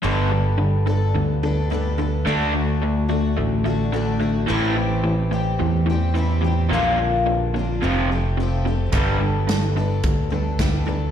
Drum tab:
HH |--------|--------|--------|--------|
SD |--------|--------|--------|--------|
BD |--------|--------|--------|--------|

HH |x-x-x-x-|
SD |--o---o-|
BD |o---o-o-|